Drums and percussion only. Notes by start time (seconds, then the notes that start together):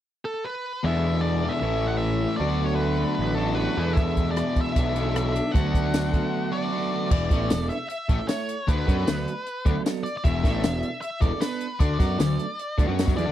3.97 kick, closed hi-hat
4.17 kick, closed hi-hat
4.37 cross-stick, closed hi-hat
4.56 kick, closed hi-hat
4.76 kick, closed hi-hat
4.96 closed hi-hat
5.16 cross-stick, closed hi-hat
5.36 closed hi-hat
5.55 kick, closed hi-hat
5.74 kick, closed hi-hat
5.94 snare, closed hi-hat, tambourine
6.13 kick, closed hi-hat
7.11 kick, crash
7.31 kick, closed hi-hat
7.50 snare, closed hi-hat, tambourine
7.70 closed hi-hat
7.90 closed hi-hat
8.09 kick, closed hi-hat
8.29 snare, closed hi-hat, tambourine
8.49 closed hi-hat
8.68 kick, closed hi-hat
8.88 kick, closed hi-hat
9.07 snare, closed hi-hat, tambourine
9.28 closed hi-hat
9.47 closed hi-hat
9.66 kick, closed hi-hat
9.86 snare, closed hi-hat, tambourine
10.06 closed hi-hat
10.25 kick, closed hi-hat
10.44 kick, snare, closed hi-hat
10.64 snare, closed hi-hat, tambourine
10.83 closed hi-hat
11.02 closed hi-hat
11.22 kick, closed hi-hat
11.41 snare, closed hi-hat, tambourine
11.61 closed hi-hat
11.80 kick, closed hi-hat
12.00 kick, snare, closed hi-hat
12.20 snare, closed hi-hat, tambourine
12.39 closed hi-hat
12.59 closed hi-hat
12.78 kick, closed hi-hat
12.99 snare, closed hi-hat, tambourine
13.08 kick
13.18 closed hi-hat